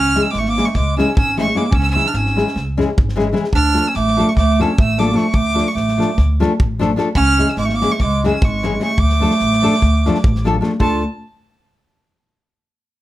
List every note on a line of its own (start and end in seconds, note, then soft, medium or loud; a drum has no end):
0.00 0.16 C#2 loud
0.00 0.24 C#4 loud
0.00 0.24 F6 loud
0.15 0.25 E3 medium
0.15 0.26 G#3 medium
0.15 0.26 C#4 medium
0.15 0.26 E4 medium
0.15 0.26 G#4 medium
0.15 snare soft
0.22 0.34 C#4 medium
0.22 0.32 E6 medium
0.30 0.41 G#3 medium
0.30 0.41 D6 loud
0.30 snare soft
0.35 0.59 G#1 loud
0.40 0.50 A3 medium
0.40 0.51 C#6 medium
0.46 0.69 A#3 medium
0.46 0.67 D6 loud
0.46 snare soft
0.57 0.67 E3 medium
0.57 0.67 G#3 medium
0.57 0.67 C#4 medium
0.57 0.68 E4 medium
0.57 0.68 G#4 medium
0.57 snare soft
0.65 0.78 A3 medium
0.65 0.76 C#6 medium
0.74 1.00 C#2 loud
0.74 0.97 G#3 medium
0.74 0.97 D6 loud
0.74 kick medium
0.74 snare soft
0.97 1.08 E3 medium
0.97 1.08 G#3 medium
0.97 1.15 C#4 medium
0.97 1.09 C#4 medium
0.97 1.09 E4 medium
0.97 1.09 G#4 loud
0.97 1.15 E6 medium
0.97 snare soft
1.16 1.50 G#1 medium
1.16 1.37 C#4 medium
1.16 1.36 E6 loud
1.16 kick loud
1.37 1.47 E3 medium
1.37 1.47 G#3 medium
1.37 1.57 A3 medium
1.37 1.47 C#4 medium
1.37 1.48 E4 medium
1.37 1.48 G#4 medium
1.37 1.59 C#6 loud
1.37 snare soft
1.55 1.64 E3 medium
1.55 1.65 G#3 medium
1.55 1.72 A#3 medium
1.55 1.65 C#4 medium
1.55 1.65 E4 medium
1.55 1.65 G#4 medium
1.55 1.76 D6 medium
1.55 snare soft
1.71 1.97 C#2 loud
1.71 1.79 C#4 loud
1.71 1.82 E6 loud
1.71 kick loud
1.79 1.88 C#4 medium
1.79 1.89 E6 loud
1.90 2.08 C#4 medium
1.90 2.09 E6 loud
1.95 2.05 E3 medium
1.95 2.06 G#3 medium
1.95 2.06 C#4 medium
1.95 2.06 E4 medium
1.95 2.06 G#4 medium
1.95 snare soft
2.05 2.18 D4 medium
2.05 2.18 F6 medium
2.05 snare soft
2.13 2.39 G#1 loud
2.13 2.63 C#4 medium
2.13 2.63 E6 loud
2.13 snare soft
2.26 snare soft
2.36 2.47 E3 medium
2.36 2.47 G#3 medium
2.36 2.47 C#4 medium
2.36 2.48 E4 medium
2.36 2.48 G#4 medium
2.36 snare soft
2.47 snare soft
2.56 2.81 C#2 loud
2.56 snare soft
2.77 2.89 E3 loud
2.77 2.88 G#3 medium
2.77 2.89 C#4 medium
2.77 2.89 E4 medium
2.77 2.89 G#4 loud
2.77 snare soft
2.98 3.31 G#1 medium
2.98 kick loud
3.09 snare soft
3.16 3.27 E3 loud
3.16 3.27 G#3 medium
3.16 3.27 C#4 medium
3.16 3.27 E4 medium
3.16 3.28 G#4 medium
3.16 snare soft
3.33 3.44 E3 medium
3.33 3.44 G#3 medium
3.33 3.44 C#4 medium
3.33 3.44 E4 medium
3.33 3.44 G#4 medium
3.33 snare soft
3.44 snare soft
3.53 3.78 D2 medium
3.53 3.90 D4 loud
3.53 3.89 F6 loud
3.53 kick medium
3.74 3.85 F3 medium
3.74 3.85 A3 medium
3.74 3.86 D4 medium
3.74 3.86 F4 medium
3.74 3.86 A4 medium
3.74 snare soft
3.87 3.98 C#4 medium
3.87 3.96 E6 loud
3.94 4.21 A1 loud
3.94 4.29 A3 loud
3.94 4.30 D6 loud
3.94 snare soft
4.08 snare soft
4.17 4.28 F3 medium
4.17 4.28 A3 medium
4.17 4.28 D4 medium
4.17 4.29 F4 medium
4.17 4.29 A4 medium
4.17 snare soft
4.29 4.37 A3 medium
4.29 4.35 C#6 medium
4.36 4.62 D2 loud
4.36 4.63 A3 loud
4.36 4.63 D6 loud
4.36 kick medium
4.36 snare soft
4.60 4.70 F3 medium
4.60 4.70 A3 medium
4.60 4.78 C#4 medium
4.60 4.71 D4 medium
4.60 4.71 F4 medium
4.60 4.71 A4 medium
4.60 4.79 E6 medium
4.60 snare soft
4.78 5.12 A1 medium
4.78 5.03 A3 medium
4.78 5.00 E6 loud
4.78 kick loud
4.98 5.08 F3 medium
4.98 5.09 A3 medium
4.98 5.19 A#3 medium
4.98 5.09 D4 medium
4.98 5.09 F4 medium
4.98 5.09 A4 medium
4.98 5.17 D6 loud
4.98 snare soft
5.13 5.25 F3 medium
5.13 5.25 A3 medium
5.13 5.25 D4 medium
5.13 5.25 F4 medium
5.13 5.25 A4 medium
5.13 5.36 C#6 medium
5.13 snare soft
5.18 5.34 A3 medium
5.33 5.59 D2 loud
5.33 5.67 A3 loud
5.33 5.69 D6 loud
5.33 kick medium
5.54 5.66 F3 medium
5.54 5.66 A3 medium
5.54 5.67 D4 medium
5.54 5.67 F4 medium
5.54 5.67 A4 medium
5.54 snare soft
5.67 5.73 A3 medium
5.67 5.76 C#6 medium
5.73 6.01 A1 medium
5.73 6.23 A3 medium
5.73 6.23 D6 loud
5.73 snare soft
5.88 snare soft
5.98 6.09 F3 medium
5.98 6.09 A3 medium
5.98 6.09 D4 medium
5.98 6.10 F4 medium
5.98 6.10 A4 medium
5.98 snare soft
6.18 6.43 D2 loud
6.18 kick medium
6.18 snare soft
6.40 6.51 F3 medium
6.40 6.51 A3 loud
6.40 6.52 D4 medium
6.40 6.52 F4 medium
6.40 6.52 A4 loud
6.40 snare soft
6.60 6.93 A1 medium
6.60 kick loud
6.79 6.90 F3 loud
6.79 6.90 A3 medium
6.79 6.90 D4 medium
6.79 6.91 F4 medium
6.79 6.91 A4 loud
6.79 snare soft
6.96 7.07 F3 medium
6.96 7.07 A3 medium
6.96 7.07 D4 medium
6.96 7.08 F4 medium
6.96 7.08 A4 loud
6.96 snare soft
7.15 7.41 C#2 loud
7.15 7.51 C#4 loud
7.15 7.51 F6 loud
7.15 kick medium
7.38 7.49 E3 medium
7.38 7.49 G#3 medium
7.38 7.49 C#4 medium
7.38 7.50 E4 medium
7.38 7.50 G#4 medium
7.38 snare soft
7.49 7.58 C#4 medium
7.49 7.57 E6 medium
7.57 7.83 G#1 loud
7.57 7.66 G#3 loud
7.57 7.68 D6 loud
7.57 snare soft
7.65 7.76 A3 medium
7.65 7.77 C#6 medium
7.69 snare soft
7.74 7.93 A#3 medium
7.74 7.93 D6 loud
7.81 7.92 E3 medium
7.81 7.92 G#3 medium
7.81 7.92 C#4 medium
7.81 7.92 E4 medium
7.81 7.93 G#4 medium
7.81 snare soft
7.91 8.04 A3 medium
7.91 8.02 C#6 medium
7.99 8.26 C#2 loud
7.99 8.26 G#3 loud
7.99 8.24 D6 loud
7.99 kick medium
7.99 snare soft
8.24 8.34 E3 medium
8.24 8.34 G#3 medium
8.24 8.35 C#4 medium
8.24 8.45 C#4 medium
8.24 8.35 E4 medium
8.24 8.35 G#4 medium
8.24 8.46 E6 medium
8.24 snare soft
8.42 8.76 G#1 loud
8.42 8.81 G#3 medium
8.42 8.82 C#6 medium
8.42 kick loud
8.63 8.73 E3 medium
8.63 8.73 G#3 medium
8.63 8.73 C#4 medium
8.63 8.73 E4 medium
8.63 8.74 G#4 medium
8.63 snare soft
8.80 8.90 E3 medium
8.80 8.90 G#3 medium
8.80 9.02 A3 medium
8.80 8.90 C#4 medium
8.80 8.91 E4 medium
8.80 8.91 G#4 medium
8.80 9.00 C#6 loud
8.80 snare soft
8.98 9.24 D2 loud
8.98 10.47 A3 medium
8.98 10.46 D6 loud
8.98 kick medium
9.10 snare soft
9.20 9.31 F3 medium
9.20 9.31 A3 medium
9.20 9.32 D4 medium
9.20 9.32 F4 medium
9.20 9.32 A4 medium
9.20 snare soft
9.31 snare soft
9.40 9.66 A1 loud
9.40 snare soft
9.53 snare soft
9.62 9.73 F3 medium
9.62 9.73 A3 medium
9.62 9.74 D4 medium
9.62 9.74 F4 medium
9.62 9.74 A4 loud
9.62 snare soft
9.74 snare soft
9.82 10.07 D2 loud
9.82 kick medium
9.82 snare soft
10.06 10.16 F3 loud
10.06 10.16 A3 medium
10.06 10.17 D4 medium
10.06 10.17 F4 medium
10.06 10.17 A4 loud
10.06 snare soft
10.15 snare soft
10.24 10.58 A1 loud
10.24 kick loud
10.35 snare soft
10.44 10.55 F3 medium
10.44 10.55 A3 medium
10.44 10.55 D4 medium
10.44 10.56 F4 medium
10.44 10.56 A4 loud
10.44 snare soft
10.61 10.71 F3 medium
10.61 10.72 A3 medium
10.61 10.72 D4 medium
10.61 10.72 F4 medium
10.61 10.72 A4 medium
10.61 snare soft
10.80 11.02 D2 loud
10.80 11.02 A3 medium
10.80 11.02 D4 medium
10.80 11.02 F4 medium
10.80 11.02 A4 medium
10.80 11.02 A5 medium
10.80 kick medium